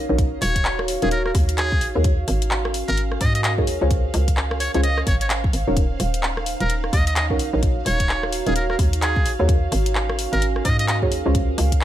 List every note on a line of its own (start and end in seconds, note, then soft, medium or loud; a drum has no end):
0.00 2.67 D#4 medium
0.00 3.91 F#4 medium
0.00 2.67 C#5 medium
0.00 11.84 F5 medium
0.09 0.38 A#1 medium
0.09 0.99 C#4 medium
0.09 0.99 D#4 medium
0.09 0.99 F#4 medium
0.09 0.99 A#4 medium
0.09 0.99 C#5 loud
0.18 kick loud
0.18 closed hi-hat medium
0.42 0.97 D#1 loud
0.42 0.79 C#5 medium
0.42 cross-stick soft
0.42 open hi-hat loud
0.56 kick medium
0.56 closed hi-hat medium
0.65 clap loud
0.79 cross-stick medium
0.88 open hi-hat loud
1.02 1.31 D#1 medium
1.02 1.11 C#4 medium
1.02 1.11 D#4 medium
1.02 1.11 F#4 medium
1.02 1.10 G#4 medium
1.02 1.11 A#4 medium
1.02 1.11 F5 medium
1.02 closed hi-hat soft
1.11 1.21 A#4 medium
1.11 closed hi-hat medium
1.26 1.32 A#4 medium
1.26 cross-stick medium
1.35 1.83 D#2 medium
1.35 kick loud
1.35 open hi-hat loud
1.49 closed hi-hat medium
1.58 1.87 G#4 medium
1.58 clap loud
1.58 closed hi-hat medium
1.72 kick loud
1.81 1.92 G#1 medium
1.81 6.91 C#4 medium
1.81 open hi-hat loud
1.95 2.25 D#2 medium
1.95 2.12 D#4 medium
1.95 2.12 F#4 medium
1.95 2.12 G#4 medium
1.95 2.12 A#4 medium
1.95 2.12 C#5 loud
2.04 kick loud
2.04 closed hi-hat medium
2.28 2.83 G#1 loud
2.28 cross-stick soft
2.28 open hi-hat loud
2.42 closed hi-hat medium
2.47 4.66 A#4 medium
2.51 clap loud
2.65 cross-stick medium
2.74 open hi-hat loud
2.88 3.18 G#1 medium
2.88 3.02 A#4 medium
2.88 closed hi-hat soft
2.97 closed hi-hat medium
3.12 cross-stick medium
3.21 3.69 G#2 medium
3.21 3.32 D#5 medium
3.21 kick loud
3.21 open hi-hat loud
3.35 3.41 D#5 medium
3.35 closed hi-hat medium
3.44 3.53 D#5 medium
3.44 clap loud
3.44 closed hi-hat medium
3.58 3.78 D#4 medium
3.58 3.78 F#4 medium
3.58 3.78 G#4 medium
3.58 3.78 A#4 medium
3.58 3.78 C#5 medium
3.58 kick medium
3.67 3.78 D#2 medium
3.67 open hi-hat medium
3.81 4.10 C#2 medium
3.81 4.71 C#4 medium
3.81 4.71 F4 medium
3.81 4.71 G#4 medium
3.81 4.71 C5 medium
3.81 4.71 C#5 loud
3.91 kick loud
3.91 closed hi-hat medium
4.14 4.69 C#2 loud
4.14 cross-stick soft
4.14 open hi-hat loud
4.28 kick medium
4.28 closed hi-hat medium
4.37 clap loud
4.51 5.77 C5 medium
4.51 cross-stick medium
4.60 4.69 C#5 medium
4.60 open hi-hat loud
4.74 5.04 C#2 medium
4.74 4.83 C#4 medium
4.74 4.83 F4 medium
4.74 4.83 G#4 medium
4.74 4.83 C5 medium
4.74 4.80 C#5 medium
4.74 4.83 C#5 medium
4.74 5.77 F5 medium
4.74 closed hi-hat soft
4.83 5.00 D#5 medium
4.83 closed hi-hat medium
4.98 cross-stick medium
5.07 5.50 G#1 medium
5.07 5.16 C#5 medium
5.07 kick loud
5.07 open hi-hat loud
5.21 5.27 C#5 medium
5.21 closed hi-hat medium
5.30 clap loud
5.30 closed hi-hat medium
5.44 kick loud
5.53 5.64 G#1 medium
5.53 open hi-hat medium
5.67 5.97 D#1 medium
5.67 5.84 C#4 medium
5.67 5.84 D#4 medium
5.67 5.84 F#4 medium
5.67 5.84 A#4 medium
5.67 5.84 C#5 loud
5.77 10.11 D#4 medium
5.77 kick loud
5.77 closed hi-hat medium
6.00 6.55 D#1 loud
6.00 cross-stick soft
6.00 open hi-hat loud
6.14 closed hi-hat medium
6.23 clap loud
6.37 10.11 C#5 medium
6.37 cross-stick medium
6.46 open hi-hat loud
6.60 6.90 D#1 medium
6.60 6.74 A#4 medium
6.60 closed hi-hat soft
6.70 closed hi-hat medium
6.84 cross-stick medium
6.93 7.41 D#2 medium
6.93 7.04 D#5 medium
6.93 kick loud
6.93 open hi-hat loud
7.07 7.13 D#5 medium
7.07 closed hi-hat medium
7.16 7.25 D#5 medium
7.16 clap loud
7.16 closed hi-hat medium
7.30 7.50 C#4 medium
7.30 7.50 D#4 medium
7.30 7.50 F#4 medium
7.30 7.50 A#4 medium
7.30 7.50 C#5 medium
7.30 kick medium
7.35 11.35 F#4 medium
7.39 7.50 A#1 medium
7.39 open hi-hat medium
7.53 7.82 A#1 medium
7.53 8.43 C#4 medium
7.53 8.43 D#4 medium
7.53 8.43 F#4 medium
7.53 8.43 A#4 medium
7.53 8.43 C#5 loud
7.63 kick loud
7.63 closed hi-hat medium
7.86 8.41 D#1 loud
7.86 8.24 C#5 medium
7.86 cross-stick soft
7.86 open hi-hat loud
8.00 kick medium
8.00 closed hi-hat medium
8.09 clap loud
8.23 cross-stick medium
8.33 open hi-hat loud
8.47 8.76 D#1 medium
8.47 8.55 C#4 medium
8.47 8.55 D#4 medium
8.47 8.55 F#4 medium
8.47 8.54 G#4 medium
8.47 8.55 A#4 medium
8.47 8.55 F5 medium
8.47 closed hi-hat soft
8.56 8.65 A#4 medium
8.56 closed hi-hat medium
8.70 8.76 A#4 medium
8.70 cross-stick medium
8.79 9.27 D#2 medium
8.79 kick loud
8.79 open hi-hat loud
8.93 closed hi-hat medium
9.02 9.31 G#4 medium
9.02 clap loud
9.02 closed hi-hat medium
9.16 kick loud
9.25 9.36 G#1 medium
9.25 11.84 C#4 medium
9.25 open hi-hat loud
9.40 9.69 D#2 medium
9.40 9.56 D#4 medium
9.40 9.56 F#4 medium
9.40 9.56 G#4 medium
9.40 9.56 A#4 medium
9.40 9.56 C#5 loud
9.49 kick loud
9.49 closed hi-hat medium
9.72 10.27 G#1 loud
9.72 cross-stick soft
9.72 open hi-hat loud
9.86 closed hi-hat medium
9.95 clap loud
10.10 11.84 A#4 medium
10.10 cross-stick medium
10.19 open hi-hat loud
10.33 10.62 G#1 medium
10.33 10.46 A#4 medium
10.33 closed hi-hat soft
10.42 closed hi-hat medium
10.56 cross-stick medium
10.65 11.13 G#2 medium
10.65 10.76 D#5 medium
10.65 kick medium
10.65 open hi-hat loud
10.79 10.85 D#5 medium
10.79 closed hi-hat medium
10.88 10.97 D#5 medium
10.88 clap loud
10.88 closed hi-hat medium
11.02 11.22 D#4 medium
11.02 11.22 F#4 medium
11.02 11.22 G#4 medium
11.02 11.22 A#4 medium
11.02 11.22 C#5 medium
11.02 kick medium
11.12 11.22 D#2 medium
11.12 open hi-hat loud
11.26 11.55 C#2 medium
11.26 11.84 C#4 medium
11.26 11.84 F4 medium
11.26 11.84 G#4 medium
11.26 11.84 C5 medium
11.26 11.84 C#5 loud
11.35 kick loud
11.35 closed hi-hat medium
11.58 11.84 C#2 loud
11.58 cross-stick soft
11.58 open hi-hat loud
11.72 kick medium
11.72 closed hi-hat medium